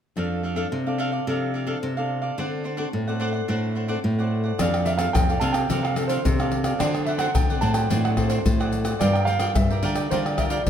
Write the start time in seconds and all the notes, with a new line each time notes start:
0.16 F2 F3 C4 D4 A4 D5 F5
0.43 D4 A4 D5 F5
0.55 C4 D4 A4 D5 F5
0.72 C3
0.86 C4 D4 A4 D5 F5
0.98 D4 A4 D5 F5
1.12 A4 D5 F5
1.27 C3 F3 C4 D4 A4 D5 F5
1.54 D4 A4 D5 F5
1.66 C4 D4 A4 D5 F5
1.83 C3
1.97 C4 D4 A4 D5 F5
2.22 A4 D5 F5
2.38 D3 C4 D4 F#4 A4 C5 D5 F#5
2.64 D4 C5 D5 F#5
2.77 C4 D4 F#4 A4 C5 D5 F#5
2.93 A2
3.08 C4 F#4 A4 C5 D5 F#5
3.20 D4 C5 D5 F#5
3.33 C5 D5 F#5
3.48 A2 D3 C4 D4 F#4 A4 C5 D5 F#5
3.75 D4 C5 D5 F#5
3.88 C4 D4 F#4 A4 C5 D5 F#5
4.04 A2
4.19 C4 F#4 A4 C5 D5 F#5
4.44 C5 D5 F#5
4.59 F2 F3 C4 D4 A4 D5 F5, pandeiro, tamborim, shaker, surdo
4.74 pandeiro, tamborim, shaker
4.85 D4 A4 D5 E5 F5, pandeiro, shaker
4.98 C4 D4 A4 D5 F5, pandeiro, tamborim, shaker
5.13 F2 C3 G5, pandeiro, tamborim, shaker, surdo
5.29 C4 D4 A4 D5 F5, pandeiro, shaker
5.40 C3 D4 A4 D5 F5 A5, pandeiro, shaker
5.53 A4 D5 F5 G5, pandeiro, tamborim, shaker
5.69 C3 F3 C4 D4 A4 D5 F5, pandeiro, shaker, surdo
5.83 F5, pandeiro, tamborim, shaker
5.96 C4 D4 A4 D5 F5, pandeiro, tamborim, shaker
6.08 D4 A4 C5 D5 F5, pandeiro, shaker
6.24 C3, pandeiro, shaker, surdo
6.39 C4 D4 A4 D5 F5, pandeiro, tamborim, shaker
6.51 pandeiro
6.64 A4 D5 F5, pandeiro, tamborim, shaker
6.79 D3 C4 D4 F#4 A4 C5 D5 F#5, pandeiro, tamborim, shaker, surdo
6.95 pandeiro, tamborim, shaker
7.06 D4 C5 D5 E5 F#5, pandeiro
7.18 C4 D4 F#4 A4 C5 D5 F#5, pandeiro, tamborim, shaker
7.35 A2 D3 G5, pandeiro, tamborim, shaker, surdo
7.50 C4 F#4 A4 C5 D5 F#5, pandeiro, shaker
7.61 A2 D4 C5 D5 F#5 A5, pandeiro
7.74 C5 D5 F#5 G5, pandeiro, tamborim, shaker
7.90 A2 D3 C4 D4 F#4 A4 C5 D5 F#5, pandeiro, shaker, surdo
8.05 F#5, pandeiro, tamborim, shaker
8.16 C4 D4 F#4 A4 C5 D5 F#5, pandeiro, tamborim, surdo
8.28 D4 C5 D5 F#5, pandeiro, shaker
8.45 A2, pandeiro, shaker, surdo
8.59 C4 F#4 A4 C5 D5 F#5, pandeiro, tamborim, shaker
8.72 pandeiro, shaker
8.85 C5 D5 F#5, pandeiro, tamborim, shaker
9.00 G2 G3 D4 F4 A#4 D5 G5, pandeiro, tamborim, shaker, surdo
9.13 G5, pandeiro, tamborim, shaker
9.25 F4 A#4 D5 F5 G5, pandeiro, shaker
9.40 D4 F4 A#4 D5 G5, pandeiro, tamborim, shaker
9.55 G2 D3 E5, pandeiro, tamborim, shaker, surdo
9.70 D4 F4 A#4 D5 G5, pandeiro, shaker
9.83 D3 F4 A#4 D5 G5, pandeiro
9.94 A#4 D5 G5, pandeiro, tamborim, shaker
10.11 D3 G3 D4 F4 A#4 C5 D5 G5, pandeiro, shaker, surdo
10.25 D5, pandeiro, tamborim, shaker
10.37 D4 F4 A#4 D5 E5 G5, pandeiro, tamborim, shaker, surdo
10.50 F4 A#4 D5 G5, pandeiro, shaker
10.66 G2 D3, pandeiro, shaker, surdo